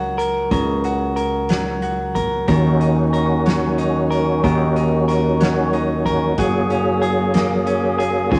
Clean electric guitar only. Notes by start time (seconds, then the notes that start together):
Already playing: C#3 F#3 F#4 A#4
0.18 A#4
0.51 C#3 A#4
0.85 F#4
1.16 A#4
1.50 F#3
1.83 F#4
2.15 A#4
2.48 D#3 A#4
2.81 D#4
3.13 A#4
3.46 F#3
3.78 D#4
4.11 A#4
4.44 D#3 A#4
4.76 D#4
5.08 A#4
5.41 F#3
5.74 D#4
6.06 A#4
6.39 F#3 G#4
6.71 C#4
7.02 G#4
7.34 A#3
7.66 C#4
7.99 G#4
8.31 C#3 G#4